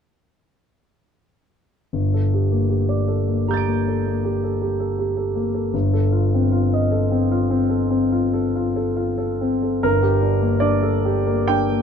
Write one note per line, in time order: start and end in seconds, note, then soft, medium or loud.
1.93 5.69 G1 soft
2.14 2.45 A4 soft
2.34 2.64 G4 soft
2.52 2.83 A#3 soft
2.69 3.02 G4 soft
2.89 3.21 D5 soft
3.08 3.40 A4 soft
3.27 3.60 A#3 soft
3.48 3.79 G4 soft
3.48 5.69 A#5 soft
3.48 5.70 G6 soft
3.54 5.71 A6 soft
3.54 5.73 D7 soft
3.67 3.98 A#3 soft
3.88 4.18 A4 soft
4.06 4.36 A#3 soft
4.25 4.54 G4 soft
4.43 4.73 A4 soft
4.62 4.91 G4 soft
4.80 5.09 A4 soft
4.99 5.28 G4 soft
5.17 5.47 A4 soft
5.35 5.66 A#3 soft
5.54 5.73 A4 soft
5.74 9.79 G1 soft
5.93 6.24 A4 soft
6.12 6.43 F4 soft
6.34 6.65 C4 soft
6.52 6.83 F4 soft
6.73 7.04 D#5 soft
6.91 7.22 A4 soft
7.11 7.42 C4 soft
7.31 7.62 F4 soft
7.50 7.82 C4 soft
7.70 8.02 A4 soft
7.91 8.24 C4 soft
8.12 8.45 F4 soft
8.33 8.66 A4 soft
8.56 8.88 F4 soft
8.76 9.09 A4 soft
8.96 9.31 F4 soft
9.18 9.54 A4 soft
9.41 9.75 C4 soft
9.62 9.83 A4 soft
9.83 11.82 G1 soft
9.83 10.62 A#4 soft
10.03 10.34 G4 soft
10.21 10.53 D4 soft
10.41 10.74 A#3 soft
10.60 10.95 D4 soft
10.60 11.49 D5 soft
10.83 11.19 A4 soft
11.05 11.41 G4 soft
11.27 11.62 A#3 soft
11.47 11.82 D4 soft
11.47 11.82 G5 medium
11.70 11.82 A#3 soft